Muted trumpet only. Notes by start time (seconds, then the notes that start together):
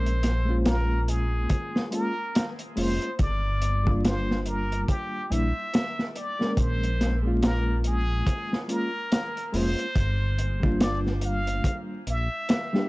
Already playing: C5
0.67 A#4
1.09 G#4
1.94 A#4
2.79 C5
3.21 D5
4.06 C5
4.47 A#4
4.89 G4
5.32 E5
6.17 D5
6.60 C5
7.44 A#4
7.87 G#4
8.72 A#4
9.56 C5
10.83 D5
11.25 F5
12.10 E5